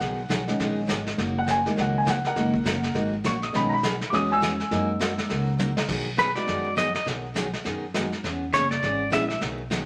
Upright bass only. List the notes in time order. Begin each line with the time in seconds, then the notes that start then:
0.00 B1
0.30 B1
0.60 A#1
0.89 G#1
1.18 F#1
1.77 C#2
2.36 F#1
2.66 F#1
2.95 G#1
3.24 A#1
3.54 B1
4.13 E2
4.71 F#2
5.30 C#2
5.89 B1
6.48 F#2
7.07 B1
7.65 F#2
8.24 E2
8.53 F#1
8.83 G#1
9.12 A#1
9.41 B1